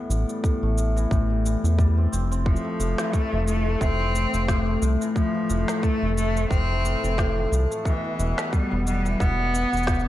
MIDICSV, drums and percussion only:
0, 0, Header, 1, 2, 480
1, 0, Start_track
1, 0, Tempo, 674157
1, 1752, Time_signature, 4, 2, 24, 8
1, 7177, End_track
2, 0, Start_track
2, 0, Title_t, "Drums"
2, 76, Note_on_c, 9, 69, 73
2, 148, Note_off_c, 9, 69, 0
2, 209, Note_on_c, 9, 69, 38
2, 280, Note_off_c, 9, 69, 0
2, 312, Note_on_c, 9, 36, 103
2, 317, Note_on_c, 9, 69, 30
2, 383, Note_off_c, 9, 36, 0
2, 388, Note_off_c, 9, 69, 0
2, 555, Note_on_c, 9, 69, 72
2, 626, Note_off_c, 9, 69, 0
2, 693, Note_on_c, 9, 69, 41
2, 765, Note_off_c, 9, 69, 0
2, 791, Note_on_c, 9, 36, 95
2, 800, Note_on_c, 9, 69, 31
2, 862, Note_off_c, 9, 36, 0
2, 871, Note_off_c, 9, 69, 0
2, 1038, Note_on_c, 9, 69, 69
2, 1110, Note_off_c, 9, 69, 0
2, 1174, Note_on_c, 9, 69, 38
2, 1245, Note_off_c, 9, 69, 0
2, 1271, Note_on_c, 9, 36, 96
2, 1279, Note_on_c, 9, 69, 29
2, 1342, Note_off_c, 9, 36, 0
2, 1351, Note_off_c, 9, 69, 0
2, 1518, Note_on_c, 9, 69, 74
2, 1589, Note_off_c, 9, 69, 0
2, 1653, Note_on_c, 9, 69, 40
2, 1725, Note_off_c, 9, 69, 0
2, 1751, Note_on_c, 9, 36, 93
2, 1823, Note_off_c, 9, 36, 0
2, 1825, Note_on_c, 9, 69, 30
2, 1896, Note_off_c, 9, 69, 0
2, 1996, Note_on_c, 9, 69, 71
2, 2067, Note_off_c, 9, 69, 0
2, 2124, Note_on_c, 9, 38, 67
2, 2129, Note_on_c, 9, 69, 43
2, 2196, Note_off_c, 9, 38, 0
2, 2200, Note_off_c, 9, 69, 0
2, 2232, Note_on_c, 9, 36, 93
2, 2234, Note_on_c, 9, 69, 32
2, 2303, Note_off_c, 9, 36, 0
2, 2305, Note_off_c, 9, 69, 0
2, 2476, Note_on_c, 9, 69, 64
2, 2547, Note_off_c, 9, 69, 0
2, 2713, Note_on_c, 9, 36, 93
2, 2717, Note_on_c, 9, 69, 33
2, 2784, Note_off_c, 9, 36, 0
2, 2789, Note_off_c, 9, 69, 0
2, 2958, Note_on_c, 9, 69, 65
2, 3029, Note_off_c, 9, 69, 0
2, 3090, Note_on_c, 9, 69, 37
2, 3161, Note_off_c, 9, 69, 0
2, 3193, Note_on_c, 9, 36, 99
2, 3193, Note_on_c, 9, 38, 65
2, 3198, Note_on_c, 9, 69, 32
2, 3264, Note_off_c, 9, 36, 0
2, 3264, Note_off_c, 9, 38, 0
2, 3269, Note_off_c, 9, 69, 0
2, 3435, Note_on_c, 9, 69, 72
2, 3507, Note_off_c, 9, 69, 0
2, 3572, Note_on_c, 9, 69, 40
2, 3644, Note_off_c, 9, 69, 0
2, 3672, Note_on_c, 9, 36, 84
2, 3678, Note_on_c, 9, 69, 29
2, 3744, Note_off_c, 9, 36, 0
2, 3749, Note_off_c, 9, 69, 0
2, 3915, Note_on_c, 9, 69, 68
2, 3986, Note_off_c, 9, 69, 0
2, 4046, Note_on_c, 9, 38, 66
2, 4050, Note_on_c, 9, 69, 40
2, 4117, Note_off_c, 9, 38, 0
2, 4122, Note_off_c, 9, 69, 0
2, 4152, Note_on_c, 9, 36, 99
2, 4157, Note_on_c, 9, 69, 30
2, 4223, Note_off_c, 9, 36, 0
2, 4228, Note_off_c, 9, 69, 0
2, 4399, Note_on_c, 9, 69, 70
2, 4470, Note_off_c, 9, 69, 0
2, 4534, Note_on_c, 9, 69, 41
2, 4606, Note_off_c, 9, 69, 0
2, 4632, Note_on_c, 9, 36, 93
2, 4641, Note_on_c, 9, 69, 30
2, 4703, Note_off_c, 9, 36, 0
2, 4713, Note_off_c, 9, 69, 0
2, 4879, Note_on_c, 9, 69, 61
2, 4951, Note_off_c, 9, 69, 0
2, 5015, Note_on_c, 9, 69, 40
2, 5086, Note_off_c, 9, 69, 0
2, 5113, Note_on_c, 9, 36, 97
2, 5118, Note_on_c, 9, 38, 69
2, 5123, Note_on_c, 9, 69, 30
2, 5184, Note_off_c, 9, 36, 0
2, 5189, Note_off_c, 9, 38, 0
2, 5194, Note_off_c, 9, 69, 0
2, 5362, Note_on_c, 9, 69, 68
2, 5433, Note_off_c, 9, 69, 0
2, 5495, Note_on_c, 9, 69, 37
2, 5566, Note_off_c, 9, 69, 0
2, 5592, Note_on_c, 9, 36, 83
2, 5598, Note_on_c, 9, 69, 31
2, 5663, Note_off_c, 9, 36, 0
2, 5669, Note_off_c, 9, 69, 0
2, 5836, Note_on_c, 9, 69, 68
2, 5907, Note_off_c, 9, 69, 0
2, 5966, Note_on_c, 9, 38, 72
2, 5971, Note_on_c, 9, 69, 40
2, 6037, Note_off_c, 9, 38, 0
2, 6042, Note_off_c, 9, 69, 0
2, 6072, Note_on_c, 9, 36, 97
2, 6075, Note_on_c, 9, 69, 29
2, 6143, Note_off_c, 9, 36, 0
2, 6146, Note_off_c, 9, 69, 0
2, 6316, Note_on_c, 9, 69, 65
2, 6388, Note_off_c, 9, 69, 0
2, 6450, Note_on_c, 9, 69, 41
2, 6521, Note_off_c, 9, 69, 0
2, 6552, Note_on_c, 9, 36, 99
2, 6558, Note_on_c, 9, 69, 30
2, 6623, Note_off_c, 9, 36, 0
2, 6629, Note_off_c, 9, 69, 0
2, 6798, Note_on_c, 9, 69, 69
2, 6870, Note_off_c, 9, 69, 0
2, 6931, Note_on_c, 9, 69, 36
2, 6955, Note_off_c, 9, 69, 0
2, 6955, Note_on_c, 9, 69, 29
2, 7000, Note_off_c, 9, 69, 0
2, 7000, Note_on_c, 9, 69, 24
2, 7029, Note_on_c, 9, 38, 70
2, 7032, Note_on_c, 9, 36, 94
2, 7033, Note_off_c, 9, 69, 0
2, 7033, Note_on_c, 9, 69, 29
2, 7079, Note_off_c, 9, 69, 0
2, 7079, Note_on_c, 9, 69, 17
2, 7100, Note_off_c, 9, 38, 0
2, 7103, Note_off_c, 9, 36, 0
2, 7117, Note_off_c, 9, 69, 0
2, 7117, Note_on_c, 9, 69, 14
2, 7177, Note_off_c, 9, 69, 0
2, 7177, End_track
0, 0, End_of_file